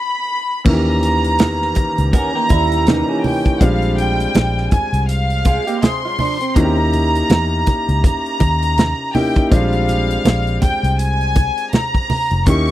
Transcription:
Already playing: violin section B5
0.65 fingered electric bass D#2, grand piano D#3 E3 A#3 C#4 E4, violin section A#5, kick, crash, muted conga
0.73 grand piano G4
1.03 closed hi-hat
1.24 closed hi-hat
1.39 fingered electric bass E2, snare, closed hi-hat, high conga
1.62 snare
1.75 kick, closed hi-hat, muted conga
1.98 fingered electric bass C#2, closed hi-hat
2.13 clean electric guitar C#4 A#4, violin section A#5, kick, closed hi-hat, low conga
2.35 clean electric guitar A#3 G4
2.49 fingered electric bass D#2, clean electric guitar G3 E4, kick, closed hi-hat, muted conga
2.72 closed hi-hat
2.87 grand piano E3 A#3 C#4 D#4 G4, clean electric guitar G3 D#4, snare, closed hi-hat, high conga
3.09 clean electric guitar E3 C#4
3.24 violin section G5, open hi-hat, high conga
3.45 kick, closed hi-hat
3.61 fingered electric bass A#1, grand piano G3 G#3 C4 D4 F4, violin section F5, kick, closed hi-hat, muted conga
3.82 closed hi-hat
3.98 violin section G5, closed hi-hat
4.20 closed hi-hat
4.35 fingered electric bass A#1, snare, closed hi-hat, high conga
4.57 snare
4.71 violin section G#5, kick, closed hi-hat, muted conga, low conga
4.93 fingered electric bass C2, closed hi-hat
5.09 violin section F5, closed hi-hat
5.30 closed hi-hat
5.45 clean electric guitar G#3 F4, kick, closed hi-hat, muted conga
5.67 clean electric guitar A#3 G4, closed hi-hat
5.82 clean electric guitar C4 G#4, violin section C6, snare, closed hi-hat, high conga
6.05 clean electric guitar G#3 F4
6.19 clean electric guitar F3 D4, open hi-hat, high conga
6.41 clean electric guitar C4, closed hi-hat
6.55 fingered electric bass D#2, grand piano A#3 C#4 D#4 E4 F#4, violin section A#5, kick, closed hi-hat, muted conga
6.64 grand piano G4
6.93 closed hi-hat, muted conga
7.15 closed hi-hat
7.30 fingered electric bass E2, snare, closed hi-hat, high conga
7.66 kick, closed hi-hat, muted conga
7.89 fingered electric bass C#2, closed hi-hat
8.04 violin section A#5, kick, closed hi-hat, low conga
8.26 closed hi-hat
8.40 fingered electric bass D#2, kick, closed hi-hat, muted conga
8.63 closed hi-hat
8.78 snare, closed hi-hat, high conga
9.15 grand piano A#3 C#4 D#4 E4 G4, violin section G5, snare, open hi-hat, high conga
9.36 kick, closed hi-hat
9.51 fingered electric bass A#1, grand piano G3 G#3 C4 D4 F4, violin section F5, kick, closed hi-hat, muted conga
9.73 closed hi-hat
9.89 closed hi-hat, muted conga
10.11 closed hi-hat
10.25 fingered electric bass A#1, snare, closed hi-hat, high conga
10.47 closed hi-hat
10.62 violin section G5, kick, closed hi-hat, muted conga, low conga
10.83 fingered electric bass C2, closed hi-hat
10.99 violin section G#5, closed hi-hat
11.21 closed hi-hat
11.36 kick, closed hi-hat, muted conga
11.58 closed hi-hat
11.73 violin section A#5, snare, closed hi-hat, high conga
11.94 kick, closed hi-hat
12.10 muted fingered electric bass stroke, open hi-hat, high conga
12.31 fingered electric bass F1, closed hi-hat
12.46 fingered electric bass D#2, grand piano A#3 C#4 D#4 E4 G4, violin section C#6, kick, closed hi-hat, muted conga
12.67 closed hi-hat

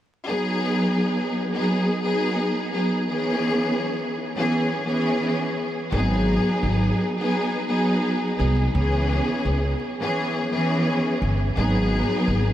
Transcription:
0.27 string section F#3 B3 D#4 G#4
1.54 string section F#3 B3 D#4 G#4
2.03 string section F#3 B3 D#4 G#4
2.73 string section F#3 B3 D#4 G#4
3.08 string section E3 B3 C#4 G#4
4.37 string section E3 B3 C#4 G#4
4.86 string section E3 B3 C#4 G#4
5.92 upright bass G#1, string section F#3 B3 D#4 G#4
6.63 upright bass G#1
7.19 string section F#3 B3 D#4 G#4
7.68 string section F#3 B3 D#4 G#4
8.38 upright bass C2, string section F#3 B3 D#4 G#4
8.73 upright bass C#2, string section E3 B3 C#4 G#4
9.45 upright bass C#2
10.02 string section E3 B3 C#4 G#4
10.51 string section E3 B3 C#4 G#4
11.22 upright bass G1
11.57 upright bass G#1, string section F#3 B3 D#4 G#4
12.28 upright bass G#1

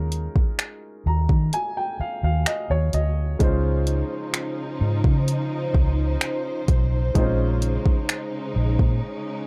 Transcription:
Already playing: fingered electric bass D#2, grand piano G#3 C#4 D#4 F4 A#4
0.12 closed hi-hat
0.36 kick
0.59 finger snap, closed hi-hat
1.06 fingered electric bass D#2, grand piano A#5
1.29 fingered electric bass D#3, kick
1.53 grand piano G#5, closed hi-hat
1.77 grand piano G5
2.00 grand piano F5, muted fingered electric bass stroke
2.23 fingered electric bass D#2, grand piano F5
2.46 grand piano D#5, finger snap, closed hi-hat
2.70 fingered electric bass D#2, grand piano C#5
2.93 fingered electric bass D2, grand piano D#5, closed hi-hat
3.39 fingered electric bass C#2, string section C#3 F3 D#4 C5, grand piano G#3 C#4 D#4 F4 C5, kick, closed hi-hat
3.87 closed hi-hat
4.34 finger snap, closed hi-hat
4.81 fingered electric bass G#2
5.04 fingered electric bass C#3, kick
5.28 closed hi-hat
5.74 fingered electric bass C#2, kick
6.21 finger snap, closed hi-hat
6.68 fingered electric bass B1, kick, closed hi-hat
7.14 fingered electric bass A#1, string section C#3 G#3 D#4, grand piano G#3 C4 D#4 F4 C5, kick, closed hi-hat
7.22 grand piano C#4
7.62 closed hi-hat
7.86 kick
8.09 finger snap, closed hi-hat
8.56 fingered electric bass A#1
8.79 fingered electric bass A#2, kick
9.03 string section C#4

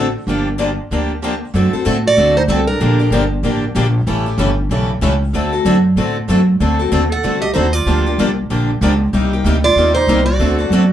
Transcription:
Already playing: upright bass A1
0.27 upright bass G1, steel-string acoustic guitar D3 F3 A#3 D4 G4
0.58 steel-string acoustic guitar D3 F3 A#3 D4 G4
0.91 upright bass D2, steel-string acoustic guitar D3 F3 A#3 D4 G4
1.23 steel-string acoustic guitar D3 F3 A#3 D4 G4
1.54 upright bass F#2, steel-string acoustic guitar D3 A3 C4 F#4 A4
1.73 steel-string acoustic guitar C4 F#4 A4, muted upright bass stroke
1.85 upright bass A2, steel-string acoustic guitar D3 A3 C4 F#4 A4
2.06 clarinet F#4, steel-string acoustic guitar D5
2.17 upright bass D2, steel-string acoustic guitar D3 A3 C4 F#4 A4
2.37 clarinet D#4, steel-string acoustic guitar C5
2.48 upright bass C2, steel-string acoustic guitar D3 A3 C4 F#4 A4, clarinet C4
2.67 clarinet D4, steel-string acoustic guitar A#4
2.80 upright bass A#1, steel-string acoustic guitar D3 F3 A#3 D4 G4
2.99 steel-string acoustic guitar A#3 D4 G4
3.10 upright bass G1, steel-string acoustic guitar D3 F3 A#3 D4 G4
3.43 upright bass A1, steel-string acoustic guitar D3 F3 A#3 D4 G4
3.75 upright bass A#1, steel-string acoustic guitar D3 F3 A#3 D4 G4
4.07 upright bass A1, steel-string acoustic guitar C#3 E3 G3 A3 C#4 E4 G4 A4
4.26 steel-string acoustic guitar A3 C#4 G4
4.38 upright bass G1, steel-string acoustic guitar C#3 E3 G3 A3 C#4 E4 G4 A4
4.69 upright bass B1, steel-string acoustic guitar C#3 E3 G3 A3 C#4 E4 G4 A4
5.01 upright bass C#2, steel-string acoustic guitar C#3 E3 G3 A3 C#4 E4 G4 A4
5.33 upright bass D2, steel-string acoustic guitar D3 A3 C4 F#4 A4
5.53 steel-string acoustic guitar C4 F#4 A4
5.65 upright bass F#2, steel-string acoustic guitar D3 A3 C4 F#4 A4
5.96 upright bass A2, steel-string acoustic guitar D3 A3 C4 F#4 A4
6.28 upright bass F#2, steel-string acoustic guitar D3 A3 C4 F#4 A4
6.60 upright bass D2, steel-string acoustic guitar D3 A3 C4 F#4 A4
6.79 steel-string acoustic guitar C4 F#4 A4
6.92 upright bass D#2, steel-string acoustic guitar D3 A3 C4 F#4 A4
7.09 clarinet A4, steel-string acoustic guitar F#5
7.23 upright bass C2, steel-string acoustic guitar D3 A3 C4 F#4 A4
7.41 clarinet G4, steel-string acoustic guitar D#5
7.53 upright bass D#2, steel-string acoustic guitar D3 A3 C4 F#4 A4 C5, clarinet D#4
7.73 clarinet F4, steel-string acoustic guitar D5
7.86 upright bass D2, steel-string acoustic guitar D3 F3 A#3 D4 G4
8.06 steel-string acoustic guitar A#3 D4 G4
8.18 upright bass C2, steel-string acoustic guitar D3 F3 A#3 D4 G4
8.50 upright bass A#1, steel-string acoustic guitar D3 F3 A#3 D4 G4
8.81 upright bass C#2, steel-string acoustic guitar D3 F3 A#3 D4 G4
9.13 upright bass C2, steel-string acoustic guitar C3 G3 A#3 D#4 G4
9.33 steel-string acoustic guitar A#3 D#4 G4
9.44 upright bass D2, steel-string acoustic guitar C3 G3 A#3 D#4 G4
9.64 clarinet F4, steel-string acoustic guitar D5
9.76 upright bass D#2, steel-string acoustic guitar C3 G3 A#3 D#4 G4
9.95 clarinet D#4, steel-string acoustic guitar C5
10.07 upright bass C2, steel-string acoustic guitar C3 G3 A#3 D#4 G4
10.25 clarinet F#4, steel-string acoustic guitar D5
10.39 upright bass D2, steel-string acoustic guitar D3 A3 C4 F#4 A4
10.58 steel-string acoustic guitar C4 F#4 A4
10.70 upright bass F#2, steel-string acoustic guitar D3 A3 C4 F#4 A4

